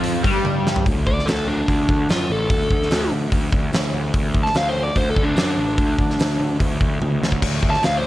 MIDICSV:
0, 0, Header, 1, 5, 480
1, 0, Start_track
1, 0, Tempo, 409836
1, 1011, Time_signature, 4, 2, 24, 8
1, 9449, End_track
2, 0, Start_track
2, 0, Title_t, "Lead electric guitar"
2, 0, Program_c, 0, 29
2, 1251, Note_on_c, 0, 74, 90
2, 1472, Note_on_c, 0, 69, 81
2, 1485, Note_off_c, 0, 74, 0
2, 1715, Note_off_c, 0, 69, 0
2, 1730, Note_on_c, 0, 62, 81
2, 2431, Note_off_c, 0, 62, 0
2, 2465, Note_on_c, 0, 65, 79
2, 2693, Note_off_c, 0, 65, 0
2, 2714, Note_on_c, 0, 69, 84
2, 3638, Note_off_c, 0, 69, 0
2, 5193, Note_on_c, 0, 81, 89
2, 5341, Note_off_c, 0, 81, 0
2, 5341, Note_on_c, 0, 77, 76
2, 5490, Note_on_c, 0, 72, 84
2, 5495, Note_off_c, 0, 77, 0
2, 5649, Note_off_c, 0, 72, 0
2, 5656, Note_on_c, 0, 74, 84
2, 5812, Note_off_c, 0, 74, 0
2, 5827, Note_on_c, 0, 72, 85
2, 5976, Note_off_c, 0, 72, 0
2, 5980, Note_on_c, 0, 69, 91
2, 6125, Note_on_c, 0, 62, 81
2, 6134, Note_off_c, 0, 69, 0
2, 6260, Note_off_c, 0, 62, 0
2, 6274, Note_on_c, 0, 62, 87
2, 7679, Note_off_c, 0, 62, 0
2, 9020, Note_on_c, 0, 81, 90
2, 9169, Note_off_c, 0, 81, 0
2, 9191, Note_on_c, 0, 77, 77
2, 9334, Note_off_c, 0, 77, 0
2, 9339, Note_on_c, 0, 72, 82
2, 9449, Note_off_c, 0, 72, 0
2, 9449, End_track
3, 0, Start_track
3, 0, Title_t, "Overdriven electric guitar"
3, 0, Program_c, 1, 29
3, 0, Note_on_c, 1, 53, 96
3, 277, Note_off_c, 1, 53, 0
3, 278, Note_on_c, 1, 55, 100
3, 998, Note_off_c, 1, 55, 0
3, 9449, End_track
4, 0, Start_track
4, 0, Title_t, "Picked electric bass"
4, 0, Program_c, 2, 34
4, 0, Note_on_c, 2, 41, 95
4, 254, Note_off_c, 2, 41, 0
4, 282, Note_on_c, 2, 43, 92
4, 961, Note_off_c, 2, 43, 0
4, 1009, Note_on_c, 2, 38, 86
4, 1402, Note_off_c, 2, 38, 0
4, 1486, Note_on_c, 2, 38, 90
4, 1881, Note_off_c, 2, 38, 0
4, 1971, Note_on_c, 2, 38, 85
4, 2168, Note_off_c, 2, 38, 0
4, 2211, Note_on_c, 2, 38, 86
4, 2408, Note_off_c, 2, 38, 0
4, 2460, Note_on_c, 2, 42, 78
4, 2653, Note_off_c, 2, 42, 0
4, 2694, Note_on_c, 2, 33, 82
4, 2890, Note_off_c, 2, 33, 0
4, 2931, Note_on_c, 2, 38, 90
4, 3129, Note_off_c, 2, 38, 0
4, 3168, Note_on_c, 2, 38, 91
4, 3367, Note_off_c, 2, 38, 0
4, 3406, Note_on_c, 2, 38, 94
4, 3606, Note_off_c, 2, 38, 0
4, 3652, Note_on_c, 2, 38, 84
4, 3850, Note_off_c, 2, 38, 0
4, 3889, Note_on_c, 2, 38, 80
4, 4088, Note_off_c, 2, 38, 0
4, 4131, Note_on_c, 2, 38, 82
4, 4329, Note_off_c, 2, 38, 0
4, 4364, Note_on_c, 2, 38, 81
4, 4565, Note_off_c, 2, 38, 0
4, 4605, Note_on_c, 2, 38, 79
4, 4806, Note_off_c, 2, 38, 0
4, 4848, Note_on_c, 2, 38, 88
4, 5243, Note_off_c, 2, 38, 0
4, 5330, Note_on_c, 2, 38, 92
4, 5724, Note_off_c, 2, 38, 0
4, 5807, Note_on_c, 2, 38, 85
4, 6007, Note_off_c, 2, 38, 0
4, 6047, Note_on_c, 2, 38, 81
4, 6247, Note_off_c, 2, 38, 0
4, 6288, Note_on_c, 2, 42, 79
4, 6487, Note_off_c, 2, 42, 0
4, 6531, Note_on_c, 2, 33, 85
4, 6728, Note_off_c, 2, 33, 0
4, 6766, Note_on_c, 2, 38, 91
4, 6965, Note_off_c, 2, 38, 0
4, 7012, Note_on_c, 2, 38, 83
4, 7208, Note_off_c, 2, 38, 0
4, 7258, Note_on_c, 2, 38, 89
4, 7452, Note_off_c, 2, 38, 0
4, 7490, Note_on_c, 2, 38, 83
4, 7687, Note_off_c, 2, 38, 0
4, 7730, Note_on_c, 2, 38, 87
4, 7926, Note_off_c, 2, 38, 0
4, 7972, Note_on_c, 2, 38, 83
4, 8167, Note_off_c, 2, 38, 0
4, 8218, Note_on_c, 2, 38, 77
4, 8410, Note_off_c, 2, 38, 0
4, 8452, Note_on_c, 2, 38, 85
4, 8646, Note_off_c, 2, 38, 0
4, 8692, Note_on_c, 2, 38, 90
4, 9081, Note_off_c, 2, 38, 0
4, 9168, Note_on_c, 2, 38, 91
4, 9449, Note_off_c, 2, 38, 0
4, 9449, End_track
5, 0, Start_track
5, 0, Title_t, "Drums"
5, 43, Note_on_c, 9, 46, 77
5, 160, Note_off_c, 9, 46, 0
5, 285, Note_on_c, 9, 36, 106
5, 287, Note_on_c, 9, 46, 60
5, 402, Note_off_c, 9, 36, 0
5, 404, Note_off_c, 9, 46, 0
5, 526, Note_on_c, 9, 48, 59
5, 643, Note_off_c, 9, 48, 0
5, 783, Note_on_c, 9, 38, 86
5, 891, Note_on_c, 9, 43, 87
5, 900, Note_off_c, 9, 38, 0
5, 1008, Note_off_c, 9, 43, 0
5, 1008, Note_on_c, 9, 46, 50
5, 1009, Note_on_c, 9, 36, 98
5, 1126, Note_off_c, 9, 36, 0
5, 1126, Note_off_c, 9, 46, 0
5, 1250, Note_on_c, 9, 36, 78
5, 1367, Note_off_c, 9, 36, 0
5, 1395, Note_on_c, 9, 38, 29
5, 1494, Note_on_c, 9, 46, 55
5, 1510, Note_off_c, 9, 38, 0
5, 1510, Note_on_c, 9, 38, 104
5, 1611, Note_off_c, 9, 46, 0
5, 1627, Note_off_c, 9, 38, 0
5, 1971, Note_on_c, 9, 36, 76
5, 1979, Note_on_c, 9, 46, 47
5, 2088, Note_off_c, 9, 36, 0
5, 2096, Note_off_c, 9, 46, 0
5, 2212, Note_on_c, 9, 36, 84
5, 2329, Note_off_c, 9, 36, 0
5, 2450, Note_on_c, 9, 46, 52
5, 2466, Note_on_c, 9, 38, 92
5, 2567, Note_off_c, 9, 46, 0
5, 2583, Note_off_c, 9, 38, 0
5, 2927, Note_on_c, 9, 46, 52
5, 2928, Note_on_c, 9, 36, 106
5, 3045, Note_off_c, 9, 36, 0
5, 3045, Note_off_c, 9, 46, 0
5, 3169, Note_on_c, 9, 36, 78
5, 3286, Note_off_c, 9, 36, 0
5, 3308, Note_on_c, 9, 38, 29
5, 3406, Note_on_c, 9, 46, 58
5, 3422, Note_off_c, 9, 38, 0
5, 3422, Note_on_c, 9, 38, 105
5, 3523, Note_off_c, 9, 46, 0
5, 3539, Note_off_c, 9, 38, 0
5, 3889, Note_on_c, 9, 36, 78
5, 3889, Note_on_c, 9, 46, 55
5, 4006, Note_off_c, 9, 36, 0
5, 4006, Note_off_c, 9, 46, 0
5, 4128, Note_on_c, 9, 36, 84
5, 4246, Note_off_c, 9, 36, 0
5, 4369, Note_on_c, 9, 46, 54
5, 4386, Note_on_c, 9, 38, 97
5, 4486, Note_off_c, 9, 46, 0
5, 4503, Note_off_c, 9, 38, 0
5, 4846, Note_on_c, 9, 46, 56
5, 4849, Note_on_c, 9, 36, 106
5, 4963, Note_off_c, 9, 46, 0
5, 4966, Note_off_c, 9, 36, 0
5, 5089, Note_on_c, 9, 36, 80
5, 5206, Note_off_c, 9, 36, 0
5, 5225, Note_on_c, 9, 38, 31
5, 5322, Note_on_c, 9, 46, 53
5, 5338, Note_off_c, 9, 38, 0
5, 5338, Note_on_c, 9, 38, 101
5, 5439, Note_off_c, 9, 46, 0
5, 5455, Note_off_c, 9, 38, 0
5, 5804, Note_on_c, 9, 46, 49
5, 5809, Note_on_c, 9, 36, 72
5, 5921, Note_off_c, 9, 46, 0
5, 5926, Note_off_c, 9, 36, 0
5, 6049, Note_on_c, 9, 36, 82
5, 6166, Note_off_c, 9, 36, 0
5, 6284, Note_on_c, 9, 46, 53
5, 6301, Note_on_c, 9, 38, 97
5, 6401, Note_off_c, 9, 46, 0
5, 6418, Note_off_c, 9, 38, 0
5, 6768, Note_on_c, 9, 46, 52
5, 6770, Note_on_c, 9, 36, 110
5, 6885, Note_off_c, 9, 46, 0
5, 6887, Note_off_c, 9, 36, 0
5, 7010, Note_on_c, 9, 36, 81
5, 7127, Note_off_c, 9, 36, 0
5, 7146, Note_on_c, 9, 38, 31
5, 7254, Note_on_c, 9, 46, 59
5, 7263, Note_off_c, 9, 38, 0
5, 7271, Note_on_c, 9, 38, 106
5, 7371, Note_off_c, 9, 46, 0
5, 7388, Note_off_c, 9, 38, 0
5, 7732, Note_on_c, 9, 36, 79
5, 7732, Note_on_c, 9, 46, 52
5, 7849, Note_off_c, 9, 36, 0
5, 7850, Note_off_c, 9, 46, 0
5, 7972, Note_on_c, 9, 36, 83
5, 8089, Note_off_c, 9, 36, 0
5, 8218, Note_on_c, 9, 48, 57
5, 8335, Note_off_c, 9, 48, 0
5, 8473, Note_on_c, 9, 38, 84
5, 8575, Note_on_c, 9, 36, 78
5, 8590, Note_off_c, 9, 38, 0
5, 8692, Note_off_c, 9, 36, 0
5, 8694, Note_on_c, 9, 36, 89
5, 8696, Note_on_c, 9, 46, 55
5, 8696, Note_on_c, 9, 49, 87
5, 8811, Note_off_c, 9, 36, 0
5, 8813, Note_off_c, 9, 46, 0
5, 8813, Note_off_c, 9, 49, 0
5, 8933, Note_on_c, 9, 36, 81
5, 9050, Note_off_c, 9, 36, 0
5, 9066, Note_on_c, 9, 38, 30
5, 9169, Note_on_c, 9, 46, 55
5, 9183, Note_off_c, 9, 38, 0
5, 9185, Note_on_c, 9, 38, 105
5, 9286, Note_off_c, 9, 46, 0
5, 9303, Note_off_c, 9, 38, 0
5, 9449, End_track
0, 0, End_of_file